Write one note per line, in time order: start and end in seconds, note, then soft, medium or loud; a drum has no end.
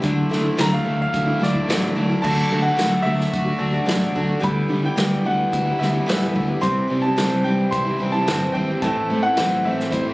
0.00 0.30 D3 medium
0.00 0.28 F#3 medium
0.00 0.30 A3 medium
0.00 0.30 D4 medium
0.00 0.30 E4 medium
0.00 0.57 C6 loud
0.00 kick loud
0.00 closed hi-hat medium
0.04 0.22 D2 loud
0.29 0.49 D3 medium
0.29 0.44 F#3 medium
0.29 0.44 A3 medium
0.29 0.43 D4 medium
0.29 0.42 E4 medium
0.29 snare soft
0.43 0.57 A3 soft
0.43 0.57 D4 soft
0.43 0.57 E4 medium
0.57 0.77 D2 medium
0.57 0.85 D3 medium
0.57 0.83 F#3 medium
0.57 0.83 A3 medium
0.57 0.84 D4 medium
0.57 0.84 E4 medium
0.57 0.72 A#5 loud
0.57 snare loud
0.57 closed hi-hat medium
0.73 0.99 F5 medium
0.84 1.05 D2 medium
0.84 1.26 F#3 medium
0.84 1.26 A3 medium
0.84 1.26 D4 medium
0.84 1.24 E4 medium
1.02 1.41 F5 medium
1.13 1.32 D2 loud
1.13 2.23 E4 medium
1.13 kick loud
1.13 closed hi-hat medium
1.25 1.39 A3 soft
1.25 1.39 D4 soft
1.25 1.40 E4 medium
1.39 1.59 D2 medium
1.39 1.54 F#3 medium
1.39 1.54 A3 medium
1.39 1.53 D4 medium
1.39 1.52 E4 medium
1.39 snare soft
1.43 2.22 D5 medium
1.53 1.68 A3 soft
1.53 1.68 D4 soft
1.53 1.68 E4 medium
1.53 kick medium
1.68 1.86 A1 medium
1.68 1.96 D3 medium
1.68 1.94 F#3 medium
1.68 1.95 A3 medium
1.68 1.96 D4 medium
1.68 1.96 E4 medium
1.68 snare loud
1.68 closed hi-hat medium
1.95 2.14 D2 medium
1.95 2.09 F#3 medium
1.95 2.10 A3 medium
1.95 2.08 D4 medium
1.95 2.08 E4 medium
2.09 2.22 A3 soft
2.09 2.22 D4 soft
2.09 2.23 E4 medium
2.22 2.42 D2 medium
2.22 2.51 D3 medium
2.22 2.49 F#3 medium
2.22 2.49 A3 medium
2.22 2.50 D4 medium
2.22 2.51 F#4 medium
2.22 2.65 A5 loud
2.22 kick loud
2.22 crash loud
2.50 2.69 D3 medium
2.50 2.64 F#3 medium
2.50 2.64 A3 medium
2.50 2.64 D4 medium
2.50 2.62 F#4 medium
2.62 2.76 A3 soft
2.62 2.76 D4 soft
2.62 2.77 F#4 medium
2.62 3.06 F#5 medium
2.76 2.96 D2 medium
2.76 3.05 D3 medium
2.76 3.03 F#3 medium
2.76 3.04 A3 medium
2.76 3.04 D4 medium
2.76 3.05 F#4 medium
2.76 snare medium
2.76 closed hi-hat medium
3.02 3.24 D2 medium
3.02 3.46 F#3 medium
3.02 3.45 A3 medium
3.02 3.45 D4 medium
3.02 3.61 E5 loud
3.07 3.44 F#4 medium
3.20 snare soft
3.32 3.51 D2 medium
3.32 4.43 F#4 medium
3.32 kick loud
3.32 closed hi-hat medium
3.45 3.58 A3 soft
3.45 3.58 D4 soft
3.45 3.58 F#4 soft
3.58 3.78 D2 medium
3.58 3.73 F#3 soft
3.58 3.73 A3 medium
3.58 3.72 D4 medium
3.58 3.71 F#4 medium
3.58 4.11 D5 medium
3.72 3.85 A3 soft
3.72 3.85 D4 soft
3.72 3.86 F#4 medium
3.85 4.06 A1 medium
3.85 4.14 D3 medium
3.85 4.14 F#3 medium
3.85 4.14 A3 medium
3.85 4.15 D4 medium
3.85 4.15 F#4 medium
3.85 snare loud
3.85 closed hi-hat medium
4.15 4.34 D2 medium
4.15 4.29 F#3 medium
4.15 4.28 A3 medium
4.15 4.27 D4 medium
4.15 4.26 F#4 medium
4.15 kick medium
4.27 4.40 A3 soft
4.27 4.40 D4 soft
4.27 4.41 F#4 medium
4.39 4.61 D2 medium
4.39 4.69 D3 medium
4.39 4.67 E3 medium
4.39 4.68 G3 medium
4.39 4.68 B3 medium
4.39 4.69 E4 medium
4.39 kick loud
4.39 closed hi-hat medium
4.44 4.86 B5 loud
4.68 4.88 D3 medium
4.68 4.83 E3 medium
4.68 4.83 G3 medium
4.68 4.82 B3 medium
4.68 4.81 E4 medium
4.82 4.96 G3 soft
4.82 4.96 B3 soft
4.82 4.96 E4 medium
4.82 5.23 G5 medium
4.96 5.15 D2 medium
4.96 5.25 D3 medium
4.96 5.23 E3 medium
4.96 5.24 G3 medium
4.96 5.24 B3 medium
4.96 5.25 E4 medium
4.96 snare medium
4.96 closed hi-hat medium
5.24 5.43 D2 medium
5.24 5.66 E3 medium
5.24 5.66 G3 medium
5.24 5.65 B3 medium
5.24 5.64 E4 medium
5.24 5.77 F#5 medium
5.52 5.71 D2 medium
5.52 7.71 E4 medium
5.52 kick loud
5.52 closed hi-hat medium
5.66 5.79 G3 soft
5.66 5.80 B3 soft
5.66 5.80 E4 medium
5.79 5.99 D2 medium
5.79 5.93 E3 medium
5.79 5.93 G3 medium
5.79 5.92 B3 medium
5.79 5.90 E4 medium
5.79 6.31 E5 medium
5.79 snare soft
5.91 6.06 G3 soft
5.91 6.07 B3 medium
5.91 6.07 E4 soft
6.06 6.26 A1 medium
6.06 6.35 D3 medium
6.06 6.32 E3 medium
6.06 6.34 G3 medium
6.06 6.34 B3 medium
6.06 6.35 E4 medium
6.06 snare loud
6.06 closed hi-hat medium
6.33 6.53 D2 medium
6.33 6.48 E3 medium
6.33 6.48 G3 medium
6.33 6.47 B3 medium
6.33 6.46 E4 medium
6.33 kick medium
6.47 6.60 G3 soft
6.47 6.62 B3 soft
6.47 6.60 E4 soft
6.61 6.81 C2 medium
6.61 6.89 C3 medium
6.61 6.86 E3 medium
6.61 6.88 G3 medium
6.61 6.89 C4 medium
6.61 6.89 E4 medium
6.61 7.05 C6 loud
6.61 kick loud
6.61 closed hi-hat medium
6.88 7.09 C3 medium
6.88 7.03 E3 medium
6.88 7.03 G3 medium
6.88 7.04 C4 medium
6.88 7.02 E4 medium
7.02 7.16 G3 soft
7.02 7.16 C4 soft
7.02 7.16 E4 medium
7.02 7.45 A5 medium
7.16 7.36 C2 medium
7.16 7.44 C3 medium
7.16 7.43 E3 medium
7.16 7.43 G3 medium
7.16 7.44 C4 medium
7.16 7.45 E4 medium
7.16 snare loud
7.16 closed hi-hat medium
7.44 7.63 C2 medium
7.44 7.86 E3 medium
7.44 7.85 G3 medium
7.44 7.85 C4 medium
7.44 7.84 E4 medium
7.44 7.70 G5 medium
7.71 7.90 C2 medium
7.71 8.82 E4 medium
7.71 8.14 C6 loud
7.71 kick loud
7.71 closed hi-hat medium
7.85 7.98 G3 soft
7.85 7.99 C4 soft
7.85 7.99 E4 medium
7.99 8.18 C2 medium
7.99 8.13 E3 medium
7.99 8.13 G3 medium
7.99 8.13 C4 medium
7.99 8.12 E4 medium
8.12 8.27 G3 soft
8.12 8.27 C4 soft
8.12 8.27 E4 soft
8.12 8.55 A5 loud
8.27 8.46 G1 medium
8.27 8.54 C3 medium
8.27 8.53 E3 medium
8.27 8.53 G3 medium
8.27 8.54 C4 medium
8.27 8.55 E4 medium
8.27 snare loud
8.27 closed hi-hat medium
8.53 8.73 G#1 medium
8.53 8.68 E3 medium
8.53 8.68 G3 medium
8.53 8.69 C4 medium
8.53 8.67 E4 medium
8.53 8.82 G5 medium
8.53 kick medium
8.69 8.83 G3 soft
8.69 8.83 C4 soft
8.69 8.82 E4 soft
8.82 9.00 A1 medium
8.82 9.10 A2 medium
8.82 9.09 E3 medium
8.82 9.09 A3 medium
8.82 9.10 C4 medium
8.82 9.10 E4 medium
8.82 9.24 A5 loud
8.82 kick loud
8.82 closed hi-hat medium
9.10 9.28 A2 medium
9.10 9.23 E3 medium
9.10 9.24 A3 medium
9.10 9.24 C4 medium
9.10 9.23 E4 medium
9.23 9.37 A3 soft
9.23 9.37 C4 soft
9.23 9.37 E4 soft
9.23 9.65 F#5 loud
9.37 9.56 A1 medium
9.37 9.64 A2 medium
9.37 9.63 E3 medium
9.37 9.64 A3 medium
9.37 9.65 C4 medium
9.37 9.65 E4 medium
9.37 snare loud
9.37 closed hi-hat medium
9.64 9.83 A1 medium
9.64 10.05 E3 medium
9.64 10.06 A3 medium
9.64 10.05 C4 medium
9.64 10.04 E4 medium
9.64 9.90 E5 medium
9.80 snare soft
9.91 10.10 A1 medium
9.91 10.14 E4 medium
9.91 10.14 C5 medium
9.91 kick loud
9.91 closed hi-hat medium
10.05 10.14 A3 soft
10.05 10.14 C4 soft
10.05 10.14 E4 soft